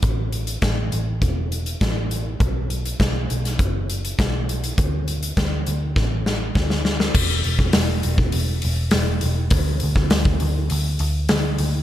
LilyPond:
<<
  \new Staff \with { instrumentName = "Picked electric bass" } { \clef bass \time 4/4 \key d \mixolydian \tempo 4 = 101 a,,4 a,,8 a,,8 e,,4 a,,4 | b,,4 b,,8 b,,8 fis,,4 b,,4 | d,4 d,8 d,8 a,,4 d,4 | e,,8 e,,8 e,,8 e,,8 e,,8 e,,8 e,,8 e,,8 |
d,8 d,8 d,8 d,8 d,8 d,8 d,8 d,8 | }
  \new DrumStaff \with { instrumentName = "Drums" } \drummode { \time 4/4 <hh bd>8 hh16 hh16 <hh bd sn>8 hh8 <hh bd>8 hh16 hh16 <hh bd sn>8 hh8 | <hh bd>8 hh16 hh16 <hh bd sn>8 hh16 <hh sn>16 <hh bd>8 hh16 hh16 <hh bd sn>8 hh16 hh16 | <hh bd>8 hh16 hh16 <hh bd sn>8 hh8 <bd sn>8 sn8 <bd sn>16 sn16 sn16 sn16 | <cymc bd>8 hho16 <bd sn>16 <hho sn>8 hho16 bd16 hho8 hho8 <hho sn>8 hho8 |
<hho bd>8 hho16 <bd sn>16 <hho sn>16 bd16 hho8 hho8 hho8 <hho sn>8 hho8 | }
>>